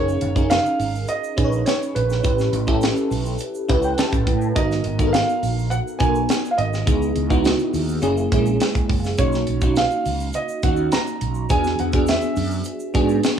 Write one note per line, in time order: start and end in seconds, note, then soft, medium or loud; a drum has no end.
0.00 0.17 F#1 medium
0.00 0.28 C#4 medium
0.00 0.28 D#4 medium
0.00 0.29 G#4 medium
0.00 0.29 A#4 medium
0.00 0.52 C#5 loud
0.09 shaker soft
0.21 0.58 F#1 loud
0.21 closed hi-hat medium
0.35 1.19 C#4 medium
0.35 1.19 D#4 medium
0.35 1.19 G#4 medium
0.35 1.19 A#4 medium
0.35 kick medium
0.35 shaker soft
0.50 1.10 F5 loud
0.50 snare loud
0.50 closed hi-hat medium
0.50 shaker medium
0.66 shaker soft
0.79 1.03 G#1 medium
0.79 open hi-hat medium
0.79 shaker soft
0.95 shaker soft
1.08 1.68 D#5 medium
1.08 closed hi-hat medium
1.08 shaker medium
1.24 shaker soft
1.37 1.62 A#1 medium
1.37 2.08 C#4 medium
1.37 2.08 D#4 medium
1.37 2.08 G#4 medium
1.37 1.44 B4 medium
1.37 kick medium
1.37 closed hi-hat medium
1.37 shaker soft
1.44 2.12 C#5 medium
1.52 shaker soft
1.66 1.96 C#5 medium
1.66 snare loud
1.66 closed hi-hat medium
1.66 shaker medium
1.82 shaker soft
1.95 2.20 A#1 medium
1.95 4.23 B4 medium
1.95 closed hi-hat medium
2.10 snare soft
2.10 shaker soft
2.23 2.48 A1 loud
2.23 2.59 C#4 medium
2.23 2.59 E4 medium
2.23 2.60 G4 medium
2.23 2.60 B4 medium
2.23 kick loud
2.23 closed hi-hat medium
2.23 shaker medium
2.38 snare soft
2.38 shaker soft
2.53 2.89 A1 loud
2.53 closed hi-hat medium
2.67 3.50 C#4 medium
2.67 3.51 E4 medium
2.67 3.51 G4 medium
2.67 3.51 A4 medium
2.67 kick medium
2.67 shaker soft
2.81 snare loud
2.81 closed hi-hat medium
2.81 shaker medium
2.97 shaker soft
3.11 3.35 B1 medium
3.11 open hi-hat medium
3.11 shaker soft
3.26 shaker soft
3.39 closed hi-hat medium
3.39 shaker medium
3.55 shaker medium
3.68 3.93 C#2 medium
3.68 4.40 C#4 medium
3.68 4.40 E4 medium
3.68 4.40 G4 medium
3.68 4.40 B4 loud
3.68 3.83 F#5 medium
3.68 kick medium
3.68 closed hi-hat medium
3.68 shaker soft
3.83 3.97 G5 medium
3.83 shaker soft
3.98 4.52 A5 medium
3.98 snare loud
3.98 closed hi-hat medium
3.98 shaker medium
4.13 4.25 A1 medium
4.13 kick medium
4.13 shaker soft
4.27 4.51 A2 medium
4.27 kick medium
4.27 closed hi-hat medium
4.41 shaker soft
4.55 4.80 G#1 loud
4.55 4.91 B3 medium
4.55 4.91 D#4 medium
4.55 4.92 F#4 medium
4.55 4.92 A#4 medium
4.55 5.15 D#5 medium
4.55 kick loud
4.55 closed hi-hat medium
4.55 shaker medium
4.71 snare soft
4.71 shaker soft
4.84 5.21 G#1 medium
4.84 closed hi-hat medium
4.99 5.82 B3 medium
4.99 5.83 D#4 medium
4.99 5.83 F#4 medium
4.99 5.07 A4 medium
4.99 kick medium
4.99 shaker soft
5.07 5.86 A#4 medium
5.13 5.73 F5 medium
5.13 snare loud
5.13 closed hi-hat medium
5.13 shaker medium
5.29 shaker soft
5.43 5.79 A#1 medium
5.43 open hi-hat medium
5.43 shaker soft
5.59 shaker soft
5.70 5.77 F#5 loud
5.70 closed hi-hat medium
5.70 shaker medium
5.88 shaker soft
5.99 6.25 B1 medium
5.99 6.71 B3 medium
5.99 6.71 D#4 medium
5.99 6.72 F#4 medium
5.99 6.72 A#4 medium
5.99 6.52 G#5 medium
5.99 kick medium
5.99 closed hi-hat medium
5.99 shaker soft
6.15 shaker soft
6.29 snare loud
6.29 closed hi-hat medium
6.29 shaker medium
6.45 shaker soft
6.51 6.58 F5 medium
6.58 6.82 G#1 medium
6.58 8.28 D#5 medium
6.58 closed hi-hat medium
6.73 snare soft
6.73 shaker soft
6.86 7.11 C#2 loud
6.86 7.22 B3 medium
6.86 7.23 D#4 medium
6.86 7.23 E4 medium
6.86 7.23 G#4 medium
6.86 kick loud
6.86 closed hi-hat medium
6.86 shaker medium
7.02 shaker soft
7.16 7.52 C#2 loud
7.16 closed hi-hat medium
7.30 8.03 B3 medium
7.30 8.03 D#4 medium
7.30 8.01 E4 medium
7.30 8.03 F#4 medium
7.30 kick medium
7.30 shaker soft
7.45 snare loud
7.45 closed hi-hat medium
7.45 shaker medium
7.59 shaker soft
7.73 7.98 D#2 medium
7.73 open hi-hat medium
7.73 shaker soft
7.89 shaker soft
8.02 8.27 F#1 loud
8.02 8.26 A#3 medium
8.02 8.27 C#4 medium
8.02 8.27 E4 medium
8.02 8.27 G#4 medium
8.02 closed hi-hat medium
8.02 shaker medium
8.17 shaker soft
8.32 8.56 A#1 medium
8.32 8.39 G#3 medium
8.32 9.03 C#4 medium
8.32 9.03 E4 medium
8.32 9.04 G#4 loud
8.32 kick medium
8.32 closed hi-hat medium
8.32 shaker soft
8.38 9.06 A#3 medium
8.46 shaker soft
8.60 snare loud
8.60 closed hi-hat medium
8.60 shaker medium
8.75 kick medium
8.75 shaker soft
8.89 9.14 F#1 medium
8.89 kick medium
8.89 open hi-hat medium
9.04 snare soft
9.04 shaker soft
9.18 9.43 B1 loud
9.18 9.54 A#3 medium
9.18 9.54 C#4 medium
9.18 9.55 D#4 medium
9.18 9.55 F#4 medium
9.18 9.78 C#5 medium
9.18 kick medium
9.18 closed hi-hat medium
9.18 shaker medium
9.32 snare soft
9.32 shaker soft
9.47 9.84 B1 medium
9.47 closed hi-hat medium
9.61 10.45 A#3 medium
9.61 10.45 C#4 medium
9.61 10.45 D#4 medium
9.61 10.45 F#4 medium
9.61 kick medium
9.61 shaker soft
9.76 10.37 F5 medium
9.76 snare medium
9.76 closed hi-hat medium
9.76 shaker medium
9.91 shaker soft
10.06 10.30 C#2 medium
10.06 open hi-hat medium
10.06 shaker soft
10.20 shaker soft
10.33 10.65 D#5 medium
10.33 closed hi-hat medium
10.33 shaker medium
10.49 shaker soft
10.63 10.87 D#2 medium
10.63 11.34 A#3 medium
10.63 11.34 C#4 medium
10.63 11.35 D#4 medium
10.63 11.35 F#4 medium
10.63 10.91 F#5 medium
10.63 kick medium
10.63 closed hi-hat medium
10.63 shaker soft
10.76 shaker soft
10.92 11.52 A#5 medium
10.92 snare medium
10.92 closed hi-hat medium
10.92 shaker medium
11.07 shaker soft
11.21 11.45 B1 medium
11.21 closed hi-hat medium
11.34 shaker soft
11.49 11.74 E2 medium
11.49 11.85 B3 medium
11.49 11.86 D4 medium
11.49 11.86 F#4 medium
11.49 11.86 G#4 medium
11.49 11.77 G#5 loud
11.49 kick medium
11.49 closed hi-hat medium
11.49 shaker medium
11.64 snare soft
11.64 shaker soft
11.79 12.15 E2 medium
11.79 11.86 F#5 medium
11.79 closed hi-hat medium
11.92 12.76 B3 medium
11.92 12.76 D4 medium
11.92 12.77 F#4 medium
11.92 12.77 G#4 medium
11.92 kick medium
11.92 shaker soft
12.07 13.20 E5 medium
12.07 snare loud
12.07 closed hi-hat medium
12.07 shaker medium
12.22 shaker soft
12.36 12.61 F#2 medium
12.36 open hi-hat medium
12.36 shaker soft
12.51 shaker soft
12.64 closed hi-hat medium
12.64 shaker medium
12.80 shaker medium
12.94 13.19 G#2 medium
12.94 13.39 B3 medium
12.94 13.39 D4 medium
12.94 13.39 F#4 medium
12.94 13.39 G#4 loud
12.94 kick medium
12.94 closed hi-hat medium
12.94 shaker soft
13.09 shaker soft
13.23 snare loud
13.23 closed hi-hat medium
13.23 shaker medium